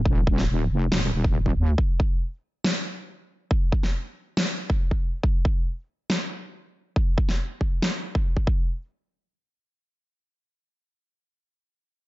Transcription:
<<
  \new Staff \with { instrumentName = "Wobble bass" } { \clef bass \time 4/4 \key ees \dorian \tempo 4 = 139 ees,,4 ees,,8 f,,8 ees,,8 ees,,4 ees,8 | r1 | r1 | r1 |
r1 | r1 | r1 | }
  \new DrumStaff \with { instrumentName = "Drums" } \drummode { \time 4/4 bd8 bd16 sn16 r4 sn8. bd16 r16 bd8. | bd8 bd8 r4 sn4 r4 | bd8 bd16 sn16 r4 sn8. bd16 r16 bd8. | bd8 bd8 r4 sn4 r4 |
bd8 bd16 sn16 r8 bd8 sn8. bd16 r16 bd16 bd8 | r4 r4 r4 r4 | r4 r4 r4 r4 | }
>>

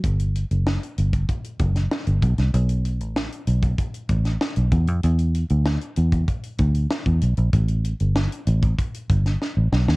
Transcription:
<<
  \new Staff \with { instrumentName = "Fingered electric bass" } { \clef bass \time 4/4 \key e \dorian \tempo 4 = 96 g,,8. fis,,8 r16 g,,8 r8 fis,,8 r16 g,,16 b,,16 c,16 | b,,8. a,,8 r16 b,,8 r8 a,,8 r16 b,,16 e,16 f,16 | e,8. d,8 r16 e,8 r8 d,8 r16 e,16 b,,16 bes,,16 | a,,8. g,,8 r16 a,,8 r8 g,,8 r16 a,,16 b,,16 ees,16 | }
  \new DrumStaff \with { instrumentName = "Drums" } \drummode { \time 4/4 <hh bd>16 hh16 hh16 hh16 sn16 hh16 hh16 <hh bd>16 <hh bd>16 hh16 <hh bd>16 <hh sn>16 sn16 hh16 <hh bd>16 <hh sn>16 | hh16 hh16 hh16 hh16 sn16 hh16 hh16 <hh bd>16 <hh bd>16 hh16 <hh bd>16 <hh sn>16 sn16 hh16 <hh bd>16 hh16 | hh16 hh16 hh16 hh16 sn16 hh16 hh16 <hh bd>16 <hh bd>16 hh16 <hh bd>16 hh16 sn16 <hh bd>16 hh16 hh16 | <hh bd>16 hh16 hh16 hh16 sn16 hh16 hh16 <hh bd>16 <hh bd>16 hh16 <hh bd>16 <hh sn>16 sn8 sn16 sn16 | }
>>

